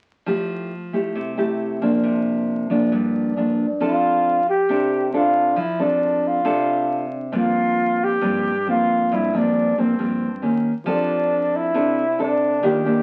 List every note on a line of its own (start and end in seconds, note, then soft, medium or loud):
0.26 1.13 F3 medium
0.26 0.71 A3 soft
0.26 0.71 E4 soft
0.26 0.71 G4 medium
0.93 1.34 A3 soft
0.93 1.34 E4 soft
0.93 1.34 G4 medium
1.15 2.02 C3 medium
1.37 1.78 A3 medium
1.37 1.78 E4 medium
1.37 1.78 G4 medium
1.82 2.67 F3 medium
1.82 2.67 A#3 medium
1.82 2.67 D4 medium
2.03 2.90 C3 medium
2.70 3.33 F3 medium
2.70 3.33 A#3 medium
2.70 3.33 D4 medium
2.92 3.78 G2 medium
3.36 3.65 F3 soft
3.36 3.65 A#3 soft
3.36 3.65 D4 medium
3.80 4.67 F3 medium
3.80 4.40 C4 medium
3.80 4.40 D4 medium
3.80 4.45 F4 medium
3.80 4.40 A4 medium
4.49 5.10 G4 medium
4.69 5.55 C3 medium
4.69 5.10 C4 soft
4.69 5.10 D4 soft
4.69 5.10 A4 medium
5.13 5.57 C4 soft
5.13 5.57 D4 medium
5.13 5.60 F4 medium
5.13 5.57 A4 medium
5.56 6.43 F3 medium
5.56 5.84 E4 medium
5.79 6.42 C4 medium
5.79 6.42 D4 medium
5.79 6.29 D4 medium
5.79 6.42 A4 medium
6.27 7.14 F4 medium
6.45 7.31 C3 medium
6.45 7.04 C4 medium
6.45 7.05 D4 medium
6.45 7.05 A4 soft
7.32 8.19 G2 medium
7.32 8.18 F3 medium
7.32 8.18 A#3 soft
7.32 8.18 C4 medium
7.37 8.06 F4 loud
8.04 8.68 G4 loud
8.21 9.08 G2 medium
8.21 8.50 F3 soft
8.21 8.51 A#3 soft
8.21 8.50 C4 medium
8.67 9.29 F3 soft
8.67 9.29 A#3 medium
8.67 9.30 C4 medium
8.67 9.15 F4 medium
9.12 9.97 G2 medium
9.12 9.38 E4 medium
9.33 9.74 F3 medium
9.33 9.74 A#3 medium
9.33 9.74 C4 medium
9.33 9.81 D4 loud
9.77 9.96 F3 soft
9.77 9.96 A#3 soft
9.77 9.96 C4 medium
9.77 10.67 C4 medium
9.99 10.41 G2 medium
9.99 10.27 F3 soft
9.99 10.27 A#3 soft
9.99 10.27 C4 medium
10.42 10.71 D#3 soft
10.42 10.71 A#3 medium
10.42 10.71 C#4 medium
10.84 12.59 F3 soft
10.84 11.73 F3 medium
10.84 11.72 C4 soft
10.84 11.72 D4 soft
10.84 12.59 G4 soft
10.84 12.60 A4 soft
10.84 11.72 A4 soft
10.88 11.57 D4 medium
10.88 12.61 C5 soft
10.88 12.62 D5 soft
11.56 12.23 E4 medium
11.74 12.61 C3 medium
11.74 12.04 C4 soft
11.74 12.04 D4 soft
11.74 12.04 A4 soft
12.19 12.62 C4 soft
12.19 12.62 D4 medium
12.19 12.67 D4 medium
12.19 12.62 A4 medium
12.61 13.03 D#3 soft
12.61 13.03 D#3 medium
12.61 12.82 A#3 soft
12.61 12.82 D4 soft
12.61 13.03 F4 soft
12.61 13.03 G4 soft
12.61 12.83 G4 medium
12.65 13.03 A#3 soft
12.65 13.03 G4 medium
12.65 13.03 D5 soft
12.85 13.03 A#3 medium
12.85 13.03 D4 medium
12.85 13.03 G4 medium